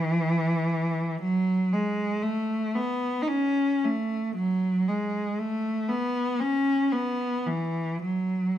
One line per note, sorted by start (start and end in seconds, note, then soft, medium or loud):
0.00 1.21 E3 medium
1.21 1.71 F#3 medium
1.72 2.23 G#3 medium
2.22 2.75 A3 medium
2.75 3.21 B3 medium
3.22 3.28 D#4 soft
3.28 3.82 C#4 medium
3.84 4.35 A3 medium
4.36 4.85 F#3 medium
4.88 5.37 G#3 medium
5.39 5.88 A3 medium
5.89 6.39 B3 medium
6.39 6.92 C#4 medium
6.92 7.47 B3 medium
7.46 8.02 E3 medium
8.02 8.57 F#3 medium